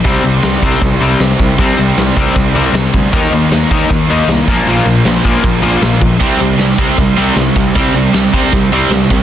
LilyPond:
<<
  \new Staff \with { instrumentName = "Distorted electric guitar" } { \clef bass \time 4/4 \key bes \lydian \tempo 4 = 156 r1 | r1 | r1 | r1 |
<c g c'>8 <c g>8 <c g>8 <c g c'>8 <c g>8 <c g c'>8 <c g>8 <c g>8 | <c g c'>8 <c g>8 <c g>8 <c g c'>8 <c g>8 <c g c'>8 <c g>8 <c g>8 | }
  \new Staff \with { instrumentName = "Distorted electric guitar" } { \clef bass \time 4/4 \key bes \lydian <c g c'>1 | <c g c'>1 | <ees bes ees'>2.~ <ees bes ees'>8 <bes, f bes>8~ | <bes, f bes>2.~ <bes, f bes>8 r8 |
<c g c'>1 | <c g c'>1 | }
  \new Staff \with { instrumentName = "Overdriven electric guitar" } { \clef bass \time 4/4 \key bes \lydian <c g c'>8 <c g>8 <c g>8 <c g c'>8 <c g>8 <c g c'>8 <c g>8 <c g>8 | <c g c'>8 <c g>8 <c g>8 <c g c'>8 <c g>8 <c g c'>8 <c g>8 <c g>8 | <ees bes ees'>8 <ees bes>8 <ees bes>8 <ees bes ees'>8 <ees bes>8 <ees bes ees'>8 <ees bes>8 <bes, f bes>8 | <bes, f bes>8 <bes, f>8 <bes, f>8 <bes, f bes>8 <bes, f>8 <bes, f bes>8 <bes, f>8 <bes, f>8 |
<c g c'>8 <c g>8 <c g>8 <c g c'>8 <c g>8 <c g c'>8 <c g>8 <c g>8 | <c g c'>8 <c g>8 <c g>8 <c g c'>8 <c g>8 <c g c'>8 <c g>8 <c g>8 | }
  \new Staff \with { instrumentName = "Picked electric bass" } { \clef bass \time 4/4 \key bes \lydian c,8 c,8 c,8 c,8 c,8 c,8 c,8 c,8 | c,8 c,8 c,8 c,8 c,8 c,8 c,8 d,8 | ees,8 ees,8 ees,8 ees,8 ees,8 ees,8 c,8 bes,,8 | bes,,8 bes,,8 bes,,8 bes,,8 bes,,8 bes,,8 bes,,8 bes,,8 |
c,8 c,8 c,8 c,8 c,8 c,8 c,8 c,8 | c,8 c,8 c,8 c,8 c,8 c,8 c,8 c,8 | }
  \new DrumStaff \with { instrumentName = "Drums" } \drummode { \time 4/4 <cymc bd>8 cymc8 <cymc sn>8 <cymc bd>8 <cymc bd>8 cymc8 <cymc sn>8 <cymc bd>8 | <cymc bd>8 cymc8 <cymc sn>8 <cymc bd>8 <cymc bd>8 cymc8 <cymc sn>8 <cymc bd>8 | <cymc bd>8 cymc8 <cymc sn>8 <cymc bd>8 <cymc bd>8 cymc8 <cymc sn>8 <cymc bd>8 | cymc8 cymc8 <cymc sn>8 <cymc bd>8 <cymc bd>8 cymc8 <cymc sn>8 <cymc bd>8 |
<cymc bd>8 cymc8 <cymc sn>8 <cymc bd>8 <cymc bd>8 cymc8 <cymc sn>8 <cymc bd>8 | <cymc bd>8 cymc8 <cymc sn>8 <cymc bd>8 <cymc bd>8 cymc8 <cymc sn>8 <cymc bd>8 | }
>>